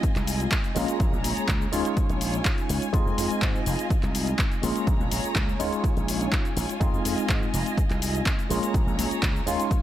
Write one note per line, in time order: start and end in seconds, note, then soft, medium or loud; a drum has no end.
0.00 0.71 G#3 medium
0.00 0.71 C4 medium
0.00 0.71 D#4 medium
0.00 0.72 F4 loud
0.00 0.74 F4 medium
0.00 0.74 D#5 medium
0.00 0.74 G#5 medium
0.00 muted slap bass stroke soft
0.00 kick loud
0.00 closed hi-hat medium
0.00 shaker soft
0.16 0.46 C2 medium
0.16 clap soft
0.16 closed hi-hat soft
0.16 shaker soft
0.27 open hi-hat loud
0.27 shaker medium
0.40 closed hi-hat medium
0.40 shaker soft
0.52 kick loud
0.52 clap loud
0.52 closed hi-hat medium
0.52 shaker soft
0.64 closed hi-hat soft
0.64 shaker soft
0.75 0.84 A#1 loud
0.75 1.67 G#3 medium
0.75 1.68 A#3 medium
0.75 1.68 C#4 medium
0.75 1.68 F4 medium
0.75 1.72 G#4 medium
0.75 2.91 C#5 medium
0.75 1.72 A#5 medium
0.75 open hi-hat loud
0.75 shaker medium
0.88 closed hi-hat medium
0.88 shaker soft
1.00 1.09 A#1 loud
1.00 kick loud
1.00 closed hi-hat medium
1.00 shaker soft
1.13 1.21 A#1 loud
1.13 shaker soft
1.24 1.33 A#1 medium
1.24 open hi-hat loud
1.24 shaker medium
1.37 closed hi-hat medium
1.37 shaker soft
1.48 1.65 C#2 loud
1.48 kick loud
1.48 clap loud
1.48 closed hi-hat medium
1.48 shaker soft
1.62 shaker soft
1.72 1.81 D#2 medium
1.72 2.88 G#3 loud
1.72 2.89 C#4 medium
1.72 2.89 D#4 medium
1.72 2.92 F4 medium
1.72 2.89 F4 loud
1.72 4.60 G#5 medium
1.72 open hi-hat loud
1.72 shaker medium
1.85 closed hi-hat medium
1.85 shaker soft
1.97 kick loud
1.97 closed hi-hat medium
1.97 shaker soft
2.09 2.39 A#1 medium
2.09 closed hi-hat soft
2.09 shaker soft
2.21 open hi-hat loud
2.21 shaker medium
2.34 closed hi-hat medium
2.34 shaker soft
2.45 kick loud
2.45 clap loud
2.45 closed hi-hat medium
2.45 shaker soft
2.58 closed hi-hat soft
2.58 shaker soft
2.69 2.78 C#2 loud
2.69 open hi-hat loud
2.69 shaker medium
2.82 closed hi-hat medium
2.82 shaker soft
2.92 3.02 F2 loud
2.92 4.58 G#3 loud
2.92 4.58 C4 medium
2.92 4.58 D#4 medium
2.92 4.61 F4 medium
2.92 4.59 F4 loud
2.92 4.61 D#5 medium
2.92 kick loud
2.92 closed hi-hat medium
2.92 shaker soft
3.06 3.14 F2 loud
3.06 shaker soft
3.18 3.26 F2 medium
3.18 open hi-hat loud
3.18 shaker medium
3.30 muted slap bass stroke soft
3.30 closed hi-hat medium
3.30 shaker soft
3.42 3.59 G#2 loud
3.42 kick loud
3.42 clap loud
3.42 closed hi-hat medium
3.42 shaker soft
3.55 shaker soft
3.66 3.75 F1 medium
3.66 open hi-hat loud
3.66 shaker medium
3.79 closed hi-hat medium
3.79 shaker soft
3.90 muted slap bass stroke soft
3.90 kick loud
3.90 closed hi-hat medium
3.90 shaker soft
4.03 4.33 C2 medium
4.03 clap soft
4.03 closed hi-hat soft
4.03 shaker soft
4.15 open hi-hat loud
4.15 shaker medium
4.27 closed hi-hat medium
4.27 shaker soft
4.39 kick loud
4.39 clap loud
4.39 closed hi-hat medium
4.39 shaker soft
4.52 closed hi-hat soft
4.52 shaker soft
4.62 4.72 A#1 loud
4.62 5.55 G#3 medium
4.62 5.55 A#3 medium
4.62 5.55 C#4 medium
4.62 5.55 F4 medium
4.62 5.59 G#4 medium
4.62 6.78 C#5 medium
4.62 5.59 A#5 medium
4.62 open hi-hat loud
4.62 shaker medium
4.76 closed hi-hat medium
4.76 shaker soft
4.87 4.96 A#1 loud
4.87 kick loud
4.87 closed hi-hat medium
4.87 shaker soft
5.00 5.08 A#1 loud
5.00 shaker soft
5.12 5.20 A#1 medium
5.12 open hi-hat loud
5.12 shaker medium
5.24 closed hi-hat soft
5.24 shaker soft
5.35 5.52 C#2 loud
5.35 kick loud
5.35 clap loud
5.35 closed hi-hat medium
5.35 shaker soft
5.49 shaker soft
5.59 5.68 D#2 medium
5.59 6.76 G#3 medium
5.59 6.76 C#4 medium
5.59 6.76 D#4 medium
5.59 8.47 F4 medium
5.59 6.77 F4 loud
5.59 8.47 G#5 medium
5.59 open hi-hat loud
5.59 shaker medium
5.73 closed hi-hat medium
5.73 shaker soft
5.84 kick loud
5.84 closed hi-hat medium
5.84 shaker soft
5.97 6.26 A#1 medium
5.97 closed hi-hat soft
5.97 shaker soft
6.08 open hi-hat loud
6.08 shaker medium
6.21 closed hi-hat medium
6.21 shaker soft
6.32 kick loud
6.32 clap loud
6.32 closed hi-hat medium
6.32 shaker soft
6.45 closed hi-hat soft
6.45 shaker soft
6.57 6.65 A#1 loud
6.57 open hi-hat loud
6.57 shaker medium
6.69 closed hi-hat medium
6.69 shaker soft
6.80 6.89 F2 loud
6.80 8.45 G#3 medium
6.80 8.45 C4 medium
6.80 8.46 D#4 medium
6.80 8.46 F4 loud
6.80 8.48 D#5 medium
6.80 kick loud
6.80 closed hi-hat medium
6.80 shaker soft
6.93 7.01 F2 loud
6.93 shaker soft
7.05 7.14 F2 medium
7.05 open hi-hat loud
7.05 shaker medium
7.18 muted slap bass stroke soft
7.18 closed hi-hat soft
7.18 shaker soft
7.29 7.46 G#2 loud
7.29 kick loud
7.29 clap loud
7.29 closed hi-hat medium
7.29 shaker soft
7.43 shaker soft
7.54 7.62 F1 medium
7.54 open hi-hat loud
7.54 shaker medium
7.66 closed hi-hat medium
7.66 shaker soft
7.77 muted slap bass stroke soft
7.77 kick loud
7.77 closed hi-hat medium
7.77 shaker soft
7.90 8.20 C2 medium
7.90 clap soft
7.90 closed hi-hat soft
7.90 shaker soft
8.02 open hi-hat loud
8.02 shaker medium
8.15 closed hi-hat medium
8.15 shaker soft
8.26 kick loud
8.26 clap loud
8.26 closed hi-hat medium
8.26 shaker soft
8.39 closed hi-hat soft
8.39 shaker soft
8.49 8.59 A#1 loud
8.49 9.42 G#3 medium
8.49 9.42 A#3 medium
8.49 9.42 C#4 medium
8.49 9.43 F4 medium
8.49 9.46 G#4 medium
8.49 9.45 C#5 medium
8.49 9.46 A#5 medium
8.49 open hi-hat loud
8.49 shaker medium
8.63 closed hi-hat medium
8.63 shaker soft
8.74 8.83 A#1 loud
8.74 kick loud
8.74 closed hi-hat medium
8.74 shaker soft
8.87 8.95 A#1 loud
8.87 shaker soft
8.98 9.07 A#1 medium
8.98 open hi-hat loud
8.98 shaker medium
9.11 muted slap bass stroke soft
9.11 closed hi-hat medium
9.11 shaker soft
9.23 9.39 C#2 loud
9.23 kick loud
9.23 clap loud
9.23 closed hi-hat medium
9.23 shaker soft
9.36 shaker soft
9.46 9.55 D#2 medium
9.46 9.82 G#3 medium
9.46 9.82 C#4 medium
9.46 9.82 D#4 medium
9.46 9.82 F4 medium
9.46 9.82 F4 loud
9.46 9.82 C#5 medium
9.46 9.82 G#5 medium
9.46 open hi-hat loud
9.46 shaker medium
9.60 closed hi-hat medium
9.60 shaker soft
9.71 kick loud
9.71 closed hi-hat medium
9.71 shaker soft